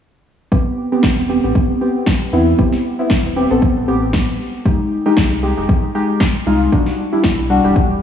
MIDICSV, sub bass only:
0, 0, Header, 1, 2, 480
1, 0, Start_track
1, 0, Key_signature, 0, "minor"
1, 0, Tempo, 517241
1, 481, Time_signature, 4, 2, 24, 8
1, 7443, End_track
2, 0, Start_track
2, 0, Title_t, "Sub bass"
2, 0, Program_c, 0, 38
2, 481, Note_on_c, 0, 33, 94
2, 587, Note_off_c, 0, 33, 0
2, 961, Note_on_c, 0, 28, 75
2, 1291, Note_off_c, 0, 28, 0
2, 1335, Note_on_c, 0, 33, 82
2, 1419, Note_off_c, 0, 33, 0
2, 2161, Note_on_c, 0, 40, 79
2, 2358, Note_off_c, 0, 40, 0
2, 2401, Note_on_c, 0, 33, 93
2, 2507, Note_off_c, 0, 33, 0
2, 2880, Note_on_c, 0, 28, 79
2, 3211, Note_off_c, 0, 28, 0
2, 3254, Note_on_c, 0, 33, 82
2, 3339, Note_off_c, 0, 33, 0
2, 3495, Note_on_c, 0, 33, 87
2, 3579, Note_off_c, 0, 33, 0
2, 3601, Note_on_c, 0, 33, 98
2, 3931, Note_off_c, 0, 33, 0
2, 3974, Note_on_c, 0, 33, 79
2, 4059, Note_off_c, 0, 33, 0
2, 4320, Note_on_c, 0, 29, 94
2, 4427, Note_off_c, 0, 29, 0
2, 4800, Note_on_c, 0, 36, 75
2, 5131, Note_off_c, 0, 36, 0
2, 5174, Note_on_c, 0, 29, 83
2, 5259, Note_off_c, 0, 29, 0
2, 6001, Note_on_c, 0, 36, 80
2, 6198, Note_off_c, 0, 36, 0
2, 6240, Note_on_c, 0, 28, 94
2, 6347, Note_off_c, 0, 28, 0
2, 6720, Note_on_c, 0, 35, 78
2, 7051, Note_off_c, 0, 35, 0
2, 7094, Note_on_c, 0, 28, 84
2, 7179, Note_off_c, 0, 28, 0
2, 7334, Note_on_c, 0, 28, 88
2, 7419, Note_off_c, 0, 28, 0
2, 7443, End_track
0, 0, End_of_file